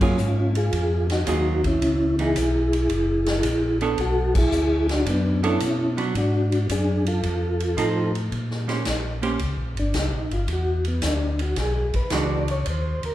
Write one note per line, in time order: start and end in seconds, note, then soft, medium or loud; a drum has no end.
0.00 0.17 F#2 medium
0.00 0.17 F#3 medium
0.00 0.17 A#3 medium
0.00 0.53 C#4 medium
0.00 0.17 F4 medium
0.00 0.52 F4 medium
0.00 0.17 G#4 medium
0.00 kick medium
0.00 crash medium
0.18 0.71 G#2 medium
0.18 hi-hat pedal soft
0.55 1.07 F4 medium
0.55 1.07 G#4 medium
0.55 ride soft
0.72 1.25 F2 medium
0.72 kick soft
0.72 ride medium
1.10 1.62 D#4 medium
1.10 1.67 F#4 medium
1.10 snare soft
1.10 ride soft
1.27 1.80 D#2 medium
1.27 1.60 F#3 soft
1.27 1.61 A#3 medium
1.27 1.61 F4 medium
1.27 1.61 G#4 medium
1.27 kick soft
1.27 hi-hat pedal soft
1.27 ride medium
1.64 2.16 C#4 medium
1.64 2.16 E4 loud
1.64 kick medium
1.64 ride soft
1.81 2.34 C#2 medium
1.81 kick soft
1.81 ride medium
2.19 2.34 E3 soft
2.19 2.34 B3 medium
2.19 2.35 D#4 medium
2.19 3.79 E4 medium
2.19 3.79 G#4 medium
2.19 ride soft
2.35 2.88 B1 medium
2.35 kick soft
2.35 hi-hat pedal medium
2.35 ride medium
2.73 ride soft
2.89 3.42 F#1 medium
2.89 kick soft
2.89 ride medium
3.26 snare medium
3.26 ride soft
3.43 3.96 A#1 medium
3.43 kick soft
3.43 hi-hat pedal soft
3.43 ride medium
3.81 3.97 B3 medium
3.81 3.97 D4 medium
3.81 3.97 A4 medium
3.81 3.97 C#5 medium
3.81 ride soft
3.98 4.51 B1 medium
3.98 4.34 F#4 medium
3.98 4.34 A4 loud
3.98 kick soft
3.98 ride medium
4.35 4.87 E4 medium
4.35 4.87 G#4 loud
4.35 kick medium
4.35 crash medium
4.52 5.05 D2 medium
4.52 hi-hat pedal medium
4.89 5.06 D4 medium
4.89 5.06 F#4 medium
4.89 snare soft
4.89 ride soft
5.06 5.59 F#2 medium
5.06 5.43 B3 medium
5.06 5.42 D4 medium
5.06 kick soft
5.06 ride medium
5.43 5.59 B3 medium
5.43 5.96 C#4 medium
5.43 5.59 D4 medium
5.43 5.95 E4 medium
5.43 5.59 A4 medium
5.43 5.60 C#5 medium
5.43 ride soft
5.60 6.14 B2 medium
5.60 kick soft
5.60 hi-hat pedal medium
5.60 ride medium
5.97 6.13 F#3 medium
5.97 6.13 B3 medium
5.97 6.14 D4 medium
5.97 ride soft
6.14 6.67 G#2 medium
6.14 6.67 D4 medium
6.14 6.67 F#4 medium
6.14 kick soft
6.14 ride medium
6.52 ride soft
6.69 7.22 F#2 medium
6.69 7.05 D4 medium
6.69 7.05 G#4 medium
6.69 kick soft
6.69 hi-hat pedal medium
6.69 ride medium
7.06 8.12 F4 medium
7.06 8.12 A4 medium
7.06 ride medium
7.23 7.76 F2 medium
7.23 kick soft
7.23 ride medium
7.60 ride soft
7.77 8.30 A2 medium
7.77 8.11 F3 medium
7.77 8.11 C4 medium
7.77 8.11 D#4 medium
7.77 8.12 A4 medium
7.77 kick soft
7.77 hi-hat pedal soft
7.77 ride medium
8.15 ride soft
8.32 8.85 A#2 medium
8.32 kick soft
8.32 ride soft
8.51 snare soft
8.68 8.84 A#3 medium
8.68 8.84 C#4 soft
8.68 8.85 G4 medium
8.68 8.85 C5 medium
8.68 snare soft
8.68 ride soft
8.85 9.39 A#1 medium
8.85 kick soft
8.85 snare medium
8.85 hi-hat pedal soft
8.85 ride medium
9.22 9.38 A#3 medium
9.22 9.39 C#4 medium
9.22 9.39 G4 medium
9.22 9.39 C5 medium
9.22 ride soft
9.39 9.58 C#2 medium
9.39 kick soft
9.39 ride medium
9.57 9.76 A#1 soft
9.75 9.93 G1 medium
9.75 ride soft
9.79 9.95 D4 medium
9.94 10.12 C2 medium
9.94 kick soft
9.94 snare medium
9.94 hi-hat pedal medium
9.94 ride medium
9.99 10.33 D#4 medium
10.12 10.30 A#1 medium
10.30 10.47 G1 medium
10.30 10.49 F4 medium
10.30 ride soft
10.48 11.01 E2 medium
10.48 kick soft
10.48 ride soft
10.53 10.87 F#4 medium
10.85 11.04 B3 medium
10.85 ride soft
11.02 11.55 D2 medium
11.02 kick soft
11.02 snare medium
11.02 hi-hat pedal medium
11.02 ride medium
11.07 11.41 D4 medium
11.39 11.58 F#4 medium
11.39 ride soft
11.56 11.92 B1 medium
11.56 11.95 G#4 medium
11.56 kick soft
11.56 snare soft
11.56 ride medium
11.93 12.03 B1 soft
11.93 12.12 B4 medium
11.93 kick soft
11.93 ride soft
12.10 12.64 C#2 medium
12.10 12.45 E3 medium
12.10 12.45 G#3 medium
12.10 12.45 D4 medium
12.10 12.46 F#4 medium
12.10 kick soft
12.10 snare medium
12.10 hi-hat pedal soft
12.10 ride medium
12.15 12.50 D5 medium
12.48 12.67 C#5 medium
12.48 ride soft
12.66 13.00 D#2 medium
12.66 kick soft
12.66 ride medium
12.70 13.04 C5 medium
13.03 13.12 D#2 soft
13.03 13.15 A#4 medium
13.03 ride soft